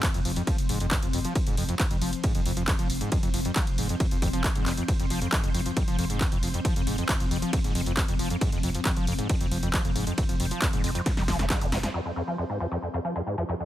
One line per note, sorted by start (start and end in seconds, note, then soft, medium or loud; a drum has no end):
0.00 0.09 F2 loud
0.00 11.93 F3 medium
0.00 11.93 C4 medium
0.00 kick loud
0.00 clap loud
0.00 closed hi-hat medium
0.00 ride medium
0.14 0.24 F1 medium
0.14 0.20 F2 loud
0.14 closed hi-hat medium
0.25 0.36 F1 loud
0.25 0.31 F2 medium
0.25 open hi-hat loud
0.36 0.42 F2 loud
0.36 closed hi-hat medium
0.47 0.56 F3 medium
0.47 kick loud
0.47 closed hi-hat medium
0.47 ride medium
0.58 0.69 F1 medium
0.58 closed hi-hat medium
0.69 0.80 F1 loud
0.69 0.78 G#2 medium
0.69 open hi-hat loud
0.80 0.91 F1 medium
0.80 0.86 F2 loud
0.80 closed hi-hat medium
0.91 0.97 F2 loud
0.91 kick loud
0.91 clap loud
0.91 closed hi-hat medium
0.91 ride medium
1.02 1.13 F1 medium
1.02 1.09 F2 medium
1.02 closed hi-hat medium
1.13 1.24 F1 loud
1.13 1.20 F2 loud
1.13 open hi-hat loud
1.25 1.34 F3 medium
1.25 closed hi-hat medium
1.35 kick loud
1.35 closed hi-hat medium
1.35 ride medium
1.47 1.57 F1 medium
1.47 1.56 G#2 medium
1.47 closed hi-hat medium
1.57 1.68 F1 loud
1.57 1.64 F2 loud
1.57 open hi-hat loud
1.69 1.75 F2 loud
1.69 closed hi-hat medium
1.80 1.86 F2 medium
1.80 kick loud
1.80 clap loud
1.80 closed hi-hat medium
1.80 ride medium
1.91 2.01 F1 medium
1.91 1.97 F2 loud
1.91 closed hi-hat medium
2.02 2.13 F1 loud
2.02 2.11 F3 medium
2.02 open hi-hat loud
2.13 closed hi-hat medium
2.24 2.33 G#2 medium
2.24 kick loud
2.24 closed hi-hat medium
2.24 ride medium
2.35 2.45 F1 medium
2.35 2.41 F2 loud
2.35 closed hi-hat medium
2.46 2.56 F1 loud
2.46 2.52 F2 loud
2.46 open hi-hat loud
2.57 2.68 F1 medium
2.57 2.63 F2 medium
2.57 closed hi-hat medium
2.68 2.74 F2 loud
2.68 kick loud
2.68 clap loud
2.68 closed hi-hat medium
2.68 ride medium
2.79 2.89 F1 medium
2.79 2.88 F3 medium
2.79 closed hi-hat medium
2.90 3.01 F1 loud
2.90 open hi-hat loud
3.01 3.10 G#2 medium
3.01 closed hi-hat medium
3.12 3.18 F2 loud
3.12 kick loud
3.12 closed hi-hat medium
3.12 ride medium
3.23 3.33 F1 medium
3.23 3.29 F2 loud
3.23 closed hi-hat medium
3.34 3.45 F1 loud
3.34 3.40 F2 medium
3.34 open hi-hat loud
3.45 3.51 F2 loud
3.45 closed hi-hat medium
3.56 3.65 F3 medium
3.56 kick loud
3.56 clap loud
3.56 closed hi-hat medium
3.56 ride medium
3.67 3.78 F1 medium
3.67 closed hi-hat medium
3.78 3.89 F1 loud
3.78 3.87 G#2 medium
3.78 open hi-hat loud
3.89 3.95 F2 loud
3.89 closed hi-hat medium
4.00 4.06 F2 loud
4.00 kick loud
4.00 closed hi-hat medium
4.00 ride medium
4.11 4.22 F1 medium
4.11 4.17 F2 medium
4.11 closed hi-hat medium
4.22 4.33 F1 loud
4.22 4.28 F2 loud
4.22 kick medium
4.22 open hi-hat loud
4.33 4.44 F1 medium
4.33 4.42 F3 medium
4.33 closed hi-hat medium
4.44 kick loud
4.44 clap loud
4.44 closed hi-hat medium
4.44 ride medium
4.55 4.66 F1 medium
4.55 4.64 G#2 medium
4.55 closed hi-hat medium
4.66 4.77 F1 loud
4.66 4.72 F2 loud
4.66 clap medium
4.66 open hi-hat loud
4.77 4.83 F2 loud
4.77 closed hi-hat medium
4.88 4.95 F2 medium
4.88 kick loud
4.88 closed hi-hat medium
4.88 ride medium
4.99 5.10 F1 medium
4.99 5.05 F2 loud
4.99 closed hi-hat medium
5.10 5.21 F1 loud
5.10 5.20 F3 medium
5.10 open hi-hat loud
5.22 5.28 F2 loud
5.22 closed hi-hat medium
5.32 5.42 G#2 medium
5.32 kick loud
5.32 clap loud
5.32 closed hi-hat medium
5.32 ride medium
5.44 5.54 F1 medium
5.44 5.50 F2 loud
5.44 closed hi-hat medium
5.54 5.66 F1 loud
5.54 5.61 F2 loud
5.54 open hi-hat loud
5.66 5.72 F2 medium
5.66 closed hi-hat medium
5.76 5.83 F2 loud
5.76 kick loud
5.76 closed hi-hat medium
5.76 ride medium
5.88 5.98 F1 medium
5.88 5.97 F3 medium
5.88 closed hi-hat medium
5.99 6.09 F1 loud
5.99 6.05 F2 loud
5.99 open hi-hat loud
6.10 6.21 F1 medium
6.10 6.19 G#2 medium
6.10 closed hi-hat medium
6.21 kick loud
6.21 clap loud
6.21 closed hi-hat medium
6.21 ride medium
6.32 6.42 F1 medium
6.32 6.38 F2 loud
6.32 closed hi-hat medium
6.43 6.54 F1 loud
6.43 6.49 F2 medium
6.43 open hi-hat loud
6.54 6.60 F2 loud
6.54 closed hi-hat medium
6.65 6.74 F3 medium
6.65 kick loud
6.65 closed hi-hat medium
6.65 ride medium
6.76 6.86 F1 medium
6.76 6.82 F2 loud
6.76 closed hi-hat medium
6.87 6.98 F1 loud
6.87 6.96 G#2 medium
6.87 open hi-hat loud
6.98 7.04 F2 loud
6.98 closed hi-hat medium
7.09 7.15 F2 loud
7.09 kick loud
7.09 clap loud
7.09 closed hi-hat medium
7.09 ride medium
7.20 7.30 F1 medium
7.20 7.26 F2 medium
7.20 closed hi-hat medium
7.31 7.42 F1 loud
7.31 7.37 F2 loud
7.31 open hi-hat loud
7.42 7.51 F3 medium
7.42 closed hi-hat medium
7.53 7.59 F2 loud
7.53 kick loud
7.53 closed hi-hat medium
7.53 ride medium
7.64 7.74 F1 medium
7.64 7.73 G#2 medium
7.64 closed hi-hat medium
7.75 7.86 F1 loud
7.75 7.81 F2 loud
7.75 open hi-hat loud
7.86 7.97 F1 medium
7.86 7.92 F2 loud
7.86 closed hi-hat medium
7.97 8.03 F2 medium
7.97 kick loud
7.97 clap loud
7.97 closed hi-hat medium
7.97 ride medium
8.08 8.19 F1 medium
8.08 8.14 F2 loud
8.08 closed hi-hat medium
8.19 8.30 F1 loud
8.19 8.28 F3 medium
8.19 open hi-hat loud
8.30 8.36 F2 loud
8.30 closed hi-hat medium
8.41 8.51 G#2 medium
8.41 kick loud
8.41 closed hi-hat medium
8.41 ride medium
8.52 8.63 F1 medium
8.52 8.58 F2 loud
8.52 closed hi-hat medium
8.63 8.74 F1 loud
8.63 8.70 F2 loud
8.63 open hi-hat loud
8.75 8.81 F2 medium
8.75 closed hi-hat medium
8.85 8.92 F2 loud
8.85 kick loud
8.85 clap loud
8.85 closed hi-hat medium
8.85 ride medium
8.97 9.07 F1 medium
8.97 9.06 F3 medium
8.97 closed hi-hat medium
9.07 9.18 F1 loud
9.07 9.14 F2 loud
9.07 open hi-hat loud
9.19 9.28 G#2 medium
9.19 closed hi-hat medium
9.29 9.36 F2 loud
9.29 kick loud
9.29 closed hi-hat medium
9.29 ride medium
9.41 9.51 F1 medium
9.41 9.47 F2 loud
9.41 closed hi-hat medium
9.51 9.62 F1 loud
9.51 9.58 F2 medium
9.51 open hi-hat loud
9.63 9.73 F1 medium
9.63 9.69 F2 loud
9.63 closed hi-hat medium
9.74 9.83 F3 medium
9.74 kick loud
9.74 clap loud
9.74 closed hi-hat medium
9.74 ride medium
9.85 9.95 F1 medium
9.85 9.91 F2 loud
9.85 closed hi-hat medium
9.96 10.07 F1 loud
9.96 10.05 G#2 medium
9.96 open hi-hat loud
10.07 10.13 F2 loud
10.07 closed hi-hat medium
10.18 10.24 F2 loud
10.18 kick loud
10.18 closed hi-hat medium
10.18 ride medium
10.29 10.39 F1 medium
10.29 10.35 F2 medium
10.29 closed hi-hat medium
10.40 10.51 F1 loud
10.40 10.46 F2 loud
10.40 open hi-hat loud
10.51 10.60 F3 medium
10.51 closed hi-hat medium
10.62 10.68 F2 loud
10.62 kick loud
10.62 clap loud
10.62 closed hi-hat medium
10.62 ride medium
10.73 10.83 F1 medium
10.73 10.82 G#2 medium
10.73 closed hi-hat medium
10.84 10.95 F1 loud
10.84 10.90 F2 loud
10.84 open hi-hat loud
10.95 11.01 F2 loud
10.95 closed hi-hat medium
11.06 11.12 F2 medium
11.06 kick loud
11.06 snare medium
11.06 closed hi-hat medium
11.06 ride medium
11.17 11.28 F1 medium
11.17 11.23 F2 loud
11.17 snare medium
11.17 open hi-hat medium
11.28 11.39 F1 loud
11.28 11.37 F3 medium
11.28 kick medium
11.28 snare medium
11.28 open hi-hat loud
11.39 11.50 F1 medium
11.39 11.45 F2 loud
11.39 snare medium
11.39 closed hi-hat medium
11.50 11.59 G#2 medium
11.50 kick loud
11.50 snare medium
11.50 clap loud
11.50 closed hi-hat medium
11.50 ride medium
11.61 11.72 F1 medium
11.61 11.67 F2 loud
11.61 closed hi-hat medium
11.72 11.83 F1 loud
11.72 11.78 F2 loud
11.72 snare loud
11.72 open hi-hat loud
11.83 11.89 F2 medium
11.83 snare medium
11.83 closed hi-hat medium
11.94 12.00 F2 loud
11.94 13.65 F3 medium
11.94 13.65 C4 medium
12.05 12.11 F2 medium
12.16 12.22 F2 loud
12.27 12.36 F3 medium
12.38 12.44 F2 medium
12.50 12.59 G#2 medium
12.60 12.67 F2 medium
12.72 12.78 F2 loud
12.82 12.89 F2 medium
12.94 13.00 F2 loud
13.04 13.14 F3 medium
13.16 13.22 F2 loud
13.27 13.36 G#2 medium
13.38 13.44 F2 loud
13.49 13.55 F2 loud
13.60 13.65 F2 medium